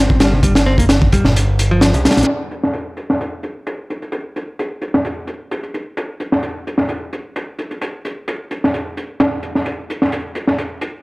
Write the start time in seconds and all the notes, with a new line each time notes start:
Already playing: G1 C4
0.10 kick
0.20 G3, snare, closed hi-hat
0.33 C3
0.43 G3, kick, closed hi-hat
0.55 snare, closed hi-hat
0.66 C4
0.78 A#3, kick, closed hi-hat
0.89 snare, closed hi-hat
1.02 kick
1.12 G3, kick, closed hi-hat
1.25 G1 A#2, snare
1.36 closed hi-hat
1.59 closed hi-hat
1.71 F3
1.81 snare, closed hi-hat
1.94 C2 C3, closed hi-hat
2.05 G3, snare, closed hi-hat
2.11 snare, closed hi-hat
2.17 A#1, snare, closed hi-hat
2.23 snare, closed hi-hat
2.28 closed hi-hat
2.51 closed hi-hat
2.63 snare
2.73 closed hi-hat
2.97 closed hi-hat
3.10 snare
3.21 closed hi-hat
3.43 closed hi-hat
3.67 closed hi-hat
3.90 closed hi-hat
4.02 closed hi-hat
4.12 closed hi-hat
4.36 closed hi-hat
4.59 closed hi-hat
4.82 closed hi-hat
4.94 snare
5.05 closed hi-hat
5.27 closed hi-hat
5.51 closed hi-hat
5.63 closed hi-hat
5.74 closed hi-hat
5.97 closed hi-hat
6.20 closed hi-hat
6.32 snare
6.43 closed hi-hat
6.67 closed hi-hat
6.78 snare
6.89 closed hi-hat
7.13 closed hi-hat
7.36 closed hi-hat
7.59 closed hi-hat
7.71 closed hi-hat
7.81 closed hi-hat
8.05 closed hi-hat
8.28 closed hi-hat
8.51 closed hi-hat
8.64 snare
8.74 closed hi-hat
8.97 closed hi-hat
9.20 snare, closed hi-hat
9.43 closed hi-hat
9.55 snare
9.66 closed hi-hat
9.90 closed hi-hat
10.02 snare
10.12 closed hi-hat
10.35 closed hi-hat
10.47 snare
10.58 closed hi-hat
10.81 closed hi-hat